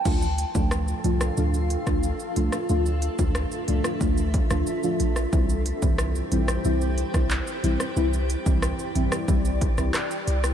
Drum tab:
CC |x---------------|----------------|----------------|----------------|
HH |--x---x---x---x-|--x---x---x---x-|--x---x---x---x-|--x---x---x---x-|
SH |xxxxxxxxxxxxxxxx|xxxxxxxxxxxxxxxx|xxxxxxxxxxxxxxxx|xxxxxxxxxxxxxxxx|
CP |----------------|----------------|------------x---|------------x---|
SD |----r--r---r---r|----r--r---r---r|----r--r---r---r|----r--r---rr--r|
BD |o--o-------o----|---o----o-o-----|o--o-------o----|---o----o-o-----|